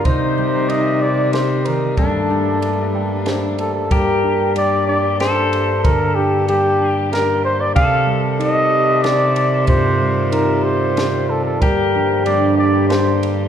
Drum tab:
RD |x-x-xx|x-x-xx|x-x-xx|x-x-x-|
SD |----o-|----o-|----o-|----o-|
BD |o-----|o-----|o-----|o-----|

RD |x-x-xx|x-x-x-|x-x-xx|
SD |----o-|----o-|----o-|
BD |o-----|o-----|o-----|